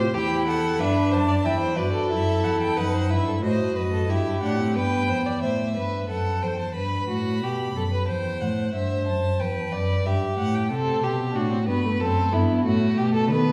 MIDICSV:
0, 0, Header, 1, 5, 480
1, 0, Start_track
1, 0, Key_signature, 0, "minor"
1, 0, Tempo, 661521
1, 104, Time_signature, 4, 2, 24, 8
1, 6344, Tempo, 651466
1, 9866, End_track
2, 0, Start_track
2, 0, Title_t, "Violin"
2, 0, Program_c, 0, 40
2, 106, Note_on_c, 0, 79, 88
2, 327, Note_off_c, 0, 79, 0
2, 344, Note_on_c, 0, 78, 84
2, 580, Note_on_c, 0, 76, 85
2, 591, Note_off_c, 0, 78, 0
2, 821, Note_on_c, 0, 81, 88
2, 832, Note_off_c, 0, 76, 0
2, 1053, Note_on_c, 0, 79, 88
2, 1064, Note_off_c, 0, 81, 0
2, 1285, Note_on_c, 0, 74, 78
2, 1295, Note_off_c, 0, 79, 0
2, 1525, Note_off_c, 0, 74, 0
2, 1529, Note_on_c, 0, 76, 83
2, 1770, Note_on_c, 0, 78, 74
2, 1781, Note_off_c, 0, 76, 0
2, 1889, Note_off_c, 0, 78, 0
2, 1892, Note_on_c, 0, 79, 77
2, 2010, Note_on_c, 0, 78, 78
2, 2021, Note_off_c, 0, 79, 0
2, 2250, Note_on_c, 0, 76, 83
2, 2261, Note_off_c, 0, 78, 0
2, 2488, Note_off_c, 0, 76, 0
2, 2491, Note_on_c, 0, 75, 79
2, 2725, Note_off_c, 0, 75, 0
2, 2728, Note_on_c, 0, 75, 76
2, 2977, Note_on_c, 0, 76, 82
2, 2988, Note_off_c, 0, 75, 0
2, 3207, Note_off_c, 0, 76, 0
2, 3212, Note_on_c, 0, 78, 75
2, 3448, Note_off_c, 0, 78, 0
2, 3456, Note_on_c, 0, 79, 84
2, 3930, Note_off_c, 0, 79, 0
2, 3938, Note_on_c, 0, 76, 60
2, 4391, Note_off_c, 0, 76, 0
2, 4425, Note_on_c, 0, 78, 57
2, 4659, Note_on_c, 0, 79, 60
2, 4670, Note_off_c, 0, 78, 0
2, 4779, Note_off_c, 0, 79, 0
2, 4784, Note_on_c, 0, 81, 59
2, 4899, Note_off_c, 0, 81, 0
2, 4905, Note_on_c, 0, 83, 63
2, 5848, Note_off_c, 0, 83, 0
2, 5859, Note_on_c, 0, 79, 70
2, 6101, Note_on_c, 0, 78, 64
2, 6112, Note_off_c, 0, 79, 0
2, 6337, Note_off_c, 0, 78, 0
2, 6341, Note_on_c, 0, 76, 69
2, 6579, Note_off_c, 0, 76, 0
2, 6583, Note_on_c, 0, 81, 72
2, 6824, Note_on_c, 0, 79, 71
2, 6835, Note_off_c, 0, 81, 0
2, 7065, Note_on_c, 0, 74, 77
2, 7076, Note_off_c, 0, 79, 0
2, 7313, Note_on_c, 0, 76, 71
2, 7324, Note_off_c, 0, 74, 0
2, 7548, Note_off_c, 0, 76, 0
2, 7552, Note_on_c, 0, 78, 77
2, 7673, Note_on_c, 0, 79, 68
2, 7684, Note_off_c, 0, 78, 0
2, 7791, Note_off_c, 0, 79, 0
2, 9866, End_track
3, 0, Start_track
3, 0, Title_t, "Violin"
3, 0, Program_c, 1, 40
3, 0, Note_on_c, 1, 72, 92
3, 105, Note_on_c, 1, 67, 75
3, 116, Note_off_c, 1, 72, 0
3, 339, Note_off_c, 1, 67, 0
3, 343, Note_on_c, 1, 69, 68
3, 577, Note_on_c, 1, 71, 77
3, 588, Note_off_c, 1, 69, 0
3, 808, Note_on_c, 1, 72, 70
3, 819, Note_off_c, 1, 71, 0
3, 924, Note_off_c, 1, 72, 0
3, 928, Note_on_c, 1, 74, 71
3, 976, Note_off_c, 1, 74, 0
3, 1046, Note_on_c, 1, 76, 76
3, 1159, Note_off_c, 1, 76, 0
3, 1163, Note_on_c, 1, 72, 65
3, 1281, Note_on_c, 1, 71, 71
3, 1292, Note_off_c, 1, 72, 0
3, 1393, Note_off_c, 1, 71, 0
3, 1397, Note_on_c, 1, 69, 75
3, 2008, Note_on_c, 1, 71, 68
3, 2019, Note_off_c, 1, 69, 0
3, 2134, Note_on_c, 1, 72, 61
3, 2145, Note_off_c, 1, 71, 0
3, 2252, Note_on_c, 1, 71, 59
3, 2263, Note_off_c, 1, 72, 0
3, 2369, Note_off_c, 1, 71, 0
3, 2374, Note_on_c, 1, 69, 60
3, 2420, Note_off_c, 1, 69, 0
3, 2489, Note_on_c, 1, 72, 75
3, 2726, Note_on_c, 1, 71, 64
3, 2737, Note_off_c, 1, 72, 0
3, 2848, Note_off_c, 1, 71, 0
3, 2851, Note_on_c, 1, 69, 57
3, 2973, Note_on_c, 1, 67, 68
3, 2984, Note_off_c, 1, 69, 0
3, 3455, Note_on_c, 1, 71, 65
3, 3466, Note_off_c, 1, 67, 0
3, 3693, Note_on_c, 1, 72, 62
3, 3704, Note_off_c, 1, 71, 0
3, 3815, Note_on_c, 1, 74, 66
3, 3826, Note_off_c, 1, 72, 0
3, 3937, Note_off_c, 1, 74, 0
3, 3941, Note_on_c, 1, 72, 68
3, 4164, Note_off_c, 1, 72, 0
3, 4181, Note_on_c, 1, 71, 65
3, 4416, Note_off_c, 1, 71, 0
3, 4424, Note_on_c, 1, 69, 69
3, 4661, Note_on_c, 1, 72, 69
3, 4672, Note_off_c, 1, 69, 0
3, 4900, Note_off_c, 1, 72, 0
3, 4906, Note_on_c, 1, 71, 67
3, 5140, Note_off_c, 1, 71, 0
3, 5147, Note_on_c, 1, 66, 67
3, 5393, Note_on_c, 1, 67, 66
3, 5404, Note_off_c, 1, 66, 0
3, 5629, Note_off_c, 1, 67, 0
3, 5632, Note_on_c, 1, 69, 65
3, 5679, Note_off_c, 1, 69, 0
3, 5749, Note_on_c, 1, 71, 71
3, 5865, Note_off_c, 1, 71, 0
3, 5871, Note_on_c, 1, 72, 65
3, 6338, Note_off_c, 1, 72, 0
3, 6353, Note_on_c, 1, 72, 67
3, 6836, Note_on_c, 1, 71, 68
3, 6847, Note_off_c, 1, 72, 0
3, 7316, Note_on_c, 1, 67, 64
3, 7327, Note_off_c, 1, 71, 0
3, 7791, Note_off_c, 1, 67, 0
3, 7795, Note_on_c, 1, 69, 84
3, 8033, Note_on_c, 1, 67, 71
3, 8044, Note_off_c, 1, 69, 0
3, 8271, Note_on_c, 1, 66, 75
3, 8282, Note_off_c, 1, 67, 0
3, 8508, Note_off_c, 1, 66, 0
3, 8512, Note_on_c, 1, 71, 78
3, 8746, Note_on_c, 1, 69, 85
3, 8758, Note_off_c, 1, 71, 0
3, 8985, Note_on_c, 1, 64, 79
3, 8996, Note_off_c, 1, 69, 0
3, 9217, Note_off_c, 1, 64, 0
3, 9222, Note_on_c, 1, 66, 78
3, 9465, Note_on_c, 1, 67, 80
3, 9476, Note_off_c, 1, 66, 0
3, 9582, Note_off_c, 1, 67, 0
3, 9587, Note_on_c, 1, 69, 82
3, 9700, Note_off_c, 1, 69, 0
3, 9704, Note_on_c, 1, 71, 85
3, 9866, Note_off_c, 1, 71, 0
3, 9866, End_track
4, 0, Start_track
4, 0, Title_t, "Viola"
4, 0, Program_c, 2, 41
4, 0, Note_on_c, 2, 67, 69
4, 106, Note_off_c, 2, 67, 0
4, 116, Note_on_c, 2, 64, 80
4, 582, Note_on_c, 2, 62, 72
4, 593, Note_off_c, 2, 64, 0
4, 1053, Note_on_c, 2, 64, 65
4, 1064, Note_off_c, 2, 62, 0
4, 1286, Note_off_c, 2, 64, 0
4, 1290, Note_on_c, 2, 66, 64
4, 1532, Note_on_c, 2, 64, 72
4, 1542, Note_off_c, 2, 66, 0
4, 2009, Note_on_c, 2, 63, 69
4, 2020, Note_off_c, 2, 64, 0
4, 2250, Note_on_c, 2, 64, 67
4, 2261, Note_off_c, 2, 63, 0
4, 2486, Note_on_c, 2, 66, 67
4, 2497, Note_off_c, 2, 64, 0
4, 2962, Note_off_c, 2, 66, 0
4, 2966, Note_on_c, 2, 64, 66
4, 3204, Note_off_c, 2, 64, 0
4, 3210, Note_on_c, 2, 62, 58
4, 3328, Note_off_c, 2, 62, 0
4, 3332, Note_on_c, 2, 60, 60
4, 3447, Note_on_c, 2, 59, 65
4, 3458, Note_off_c, 2, 60, 0
4, 3936, Note_off_c, 2, 59, 0
4, 7788, Note_on_c, 2, 60, 68
4, 8237, Note_off_c, 2, 60, 0
4, 8261, Note_on_c, 2, 62, 65
4, 8377, Note_off_c, 2, 62, 0
4, 8381, Note_on_c, 2, 60, 64
4, 8430, Note_off_c, 2, 60, 0
4, 8502, Note_on_c, 2, 59, 64
4, 8621, Note_off_c, 2, 59, 0
4, 8631, Note_on_c, 2, 57, 66
4, 8678, Note_off_c, 2, 57, 0
4, 8749, Note_on_c, 2, 60, 69
4, 8985, Note_on_c, 2, 59, 63
4, 8996, Note_off_c, 2, 60, 0
4, 9224, Note_off_c, 2, 59, 0
4, 9229, Note_on_c, 2, 57, 71
4, 9709, Note_on_c, 2, 59, 73
4, 9720, Note_off_c, 2, 57, 0
4, 9866, Note_off_c, 2, 59, 0
4, 9866, End_track
5, 0, Start_track
5, 0, Title_t, "Cello"
5, 0, Program_c, 3, 42
5, 0, Note_on_c, 3, 45, 73
5, 101, Note_off_c, 3, 45, 0
5, 106, Note_on_c, 3, 40, 69
5, 570, Note_off_c, 3, 40, 0
5, 579, Note_on_c, 3, 43, 73
5, 815, Note_on_c, 3, 42, 71
5, 826, Note_off_c, 3, 43, 0
5, 1046, Note_off_c, 3, 42, 0
5, 1050, Note_on_c, 3, 40, 69
5, 1283, Note_off_c, 3, 40, 0
5, 1289, Note_on_c, 3, 43, 67
5, 1523, Note_off_c, 3, 43, 0
5, 1528, Note_on_c, 3, 42, 69
5, 1770, Note_on_c, 3, 40, 65
5, 1781, Note_off_c, 3, 42, 0
5, 2009, Note_on_c, 3, 42, 65
5, 2020, Note_off_c, 3, 40, 0
5, 2248, Note_on_c, 3, 43, 65
5, 2259, Note_off_c, 3, 42, 0
5, 2481, Note_off_c, 3, 43, 0
5, 2485, Note_on_c, 3, 45, 63
5, 2722, Note_off_c, 3, 45, 0
5, 2725, Note_on_c, 3, 42, 61
5, 2969, Note_on_c, 3, 43, 59
5, 2979, Note_off_c, 3, 42, 0
5, 3206, Note_off_c, 3, 43, 0
5, 3211, Note_on_c, 3, 45, 63
5, 3455, Note_on_c, 3, 43, 64
5, 3466, Note_off_c, 3, 45, 0
5, 3698, Note_on_c, 3, 40, 59
5, 3709, Note_off_c, 3, 43, 0
5, 3935, Note_off_c, 3, 40, 0
5, 3939, Note_on_c, 3, 45, 53
5, 4181, Note_on_c, 3, 43, 53
5, 4192, Note_off_c, 3, 45, 0
5, 4418, Note_off_c, 3, 43, 0
5, 4422, Note_on_c, 3, 42, 56
5, 4662, Note_on_c, 3, 40, 54
5, 4673, Note_off_c, 3, 42, 0
5, 4897, Note_off_c, 3, 40, 0
5, 4901, Note_on_c, 3, 43, 58
5, 5137, Note_off_c, 3, 43, 0
5, 5143, Note_on_c, 3, 45, 58
5, 5385, Note_on_c, 3, 47, 65
5, 5396, Note_off_c, 3, 45, 0
5, 5619, Note_off_c, 3, 47, 0
5, 5624, Note_on_c, 3, 42, 62
5, 5867, Note_on_c, 3, 40, 63
5, 5878, Note_off_c, 3, 42, 0
5, 6109, Note_on_c, 3, 45, 58
5, 6120, Note_off_c, 3, 40, 0
5, 6341, Note_off_c, 3, 45, 0
5, 6345, Note_on_c, 3, 43, 64
5, 6588, Note_on_c, 3, 42, 59
5, 6599, Note_off_c, 3, 43, 0
5, 6829, Note_on_c, 3, 40, 62
5, 6840, Note_off_c, 3, 42, 0
5, 7067, Note_off_c, 3, 40, 0
5, 7071, Note_on_c, 3, 42, 66
5, 7306, Note_off_c, 3, 42, 0
5, 7311, Note_on_c, 3, 43, 64
5, 7546, Note_off_c, 3, 43, 0
5, 7555, Note_on_c, 3, 45, 68
5, 7794, Note_on_c, 3, 48, 68
5, 7805, Note_off_c, 3, 45, 0
5, 8026, Note_off_c, 3, 48, 0
5, 8031, Note_on_c, 3, 47, 65
5, 8269, Note_on_c, 3, 45, 69
5, 8280, Note_off_c, 3, 47, 0
5, 8505, Note_on_c, 3, 43, 65
5, 8516, Note_off_c, 3, 45, 0
5, 8740, Note_off_c, 3, 43, 0
5, 8744, Note_on_c, 3, 42, 69
5, 8977, Note_off_c, 3, 42, 0
5, 8981, Note_on_c, 3, 43, 72
5, 9217, Note_off_c, 3, 43, 0
5, 9223, Note_on_c, 3, 45, 72
5, 9460, Note_off_c, 3, 45, 0
5, 9465, Note_on_c, 3, 47, 73
5, 9703, Note_on_c, 3, 51, 83
5, 9714, Note_off_c, 3, 47, 0
5, 9866, Note_off_c, 3, 51, 0
5, 9866, End_track
0, 0, End_of_file